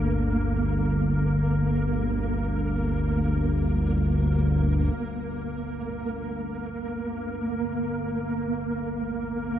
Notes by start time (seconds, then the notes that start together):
Already playing: G1 D2 G3 A#3 D4 A4
4.97 G1 D2 A#3